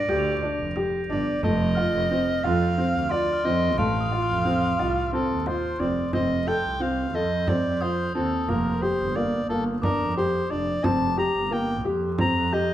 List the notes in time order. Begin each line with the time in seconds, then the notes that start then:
Already playing: D5 A#6 D7
0.09 D2 G4 G6, frame drum
0.19 F7
0.42 D4, frame drum
0.59 F1
0.76 G4, frame drum
1.09 G1 D4 D5
1.43 F1 A3 D#5, frame drum
1.75 F4 F6
1.94 F1
2.11 C4
2.44 F2 F4 F5, frame drum
2.78 C4
2.94 D2
3.09 F4 D5 C6, frame drum
3.33 F6
3.45 F2 C4 D#5
3.78 A1 A3 F5 C6, frame drum
4.01 D#6
4.12 F4
4.22 F6
4.29 F2
4.45 C4
4.79 C2 F4, frame drum
5.13 C4 A4, frame drum
5.29 D#2
5.46 F4 C5, frame drum
5.80 F1 C4 D5
6.13 F1 C4 D#5, frame drum
6.47 A4 G5 G6
6.64 C2
6.80 C4 F5
7.14 F2 A4 D#5, frame drum
7.47 C4 D5, frame drum
7.65 F2
7.81 F4 C5 D#6, frame drum
8.14 D#2 C4 A4
8.48 F1 A#3 A#4, frame drum
8.82 G4 C5
8.99 G1
9.16 A#3 D5
9.49 G1 A#3 A4, frame drum
9.82 D4 A#4 D6, frame drum
10.00 F2
10.17 G4 C5, frame drum
10.50 F1 D4 D5
10.84 F1 C4 A5, frame drum
11.17 G4 A#5
11.35 G1
11.51 A#3 G5
11.85 F2 G4
12.18 C4 A#5, frame drum
12.36 F2
12.52 G4 D#5 G6, frame drum